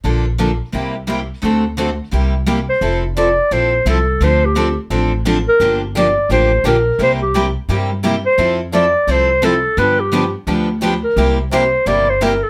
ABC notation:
X:1
M:4/4
L:1/16
Q:"Swing" 1/4=173
K:F
V:1 name="Clarinet"
z16 | z12 z2 c2- | c2 z2 d4 c4 A4 | c2 G4 z8 B2- |
B2 z2 d4 c4 B4 | c2 G4 z8 c2- | c2 z2 d4 c4 A4 | =B2 G4 z8 _B2- |
B2 z2 c4 d2 c2 B2 A2 |]
V:2 name="Steel-string acoustic guitar"
[D,F,B,DA]2 z2 [D,F,B,DA] z3 [C,G,B,EG]2 z2 [C,G,B,EG] z3 | [D,A,C^FA]2 z2 [D,A,CFA] z3 [C,G,B,EG]2 z2 [C,G,B,EG] z3 | [F,CEA]2 z2 [F,CEA] z3 [F,CEA]2 z2 [F,CEA] z3 | [D,F,CDA]2 z2 [D,F,CDA] z3 [D,F,CDA]2 z2 [D,F,CDA] z3 |
[D,F,B,DG]2 z2 [D,F,B,DG] z3 [D,F,B,DG]2 z2 [D,F,B,DG] z3 | [C,G,B,EG]2 z2 [C,G,B,EG] z3 [C,G,B,EG]2 z2 [C,G,B,EG] z3 | [F,CEA]2 z2 [F,CEA] z3 [F,CEA]2 z2 [F,CEA] z3 | [D,F,=B,DG]2 z2 [D,F,B,DG] z3 [D,F,B,DG]2 z2 [D,F,B,DG] z3 |
[C,G,B,EG]2 z2 [C,G,B,EG] z3 [C,G,B,EG]2 z2 [C,G,B,EG] z3 |]
V:3 name="Steel-string acoustic guitar"
[D,F,B,DA]2 z2 [D,F,B,DA] z3 [C,G,B,EG]2 z2 [C,G,B,EG] z3 | [D,A,C^FA]2 z2 [D,A,CFA] z3 [C,G,B,EG]2 z2 [C,G,B,EG] z3 | [F,CEA]2 z2 [F,CEA] z3 [F,CEA]2 z2 [F,CEA] z3 | [D,F,CDA]2 z2 [D,F,CDA] z3 [D,F,CDA]2 z2 [D,F,CDA] z3 |
[D,F,B,DG]2 z2 [D,F,B,DG] z3 [D,F,B,DG]2 z2 [D,F,B,DG] z3 | [C,G,B,EG]2 z2 [C,G,B,EG] z3 [C,G,B,EG]2 z2 [C,G,B,EG] z3 | [F,CEA]2 z2 [F,CEA] z3 [F,CEA]2 z2 [F,CEA] z3 | [D,F,=B,DG]2 z2 [D,F,B,DG] z3 [D,F,B,DG]2 z2 [D,F,B,DG] z3 |
[C,G,B,EG]2 z2 [C,G,B,EG] z3 [C,G,B,EG]2 z2 [C,G,B,EG] z3 |]
V:4 name="Upright bass" clef=bass
B,,,8 C,,8 | D,,8 C,,8 | F,,,8 B,,,4 C,,4 | D,,8 A,,,8 |
G,,,8 A,,,4 B,,,4 | C,,8 G,,8 | F,,8 C,,8 | G,,8 D,,8 |
C,,8 G,,,8 |]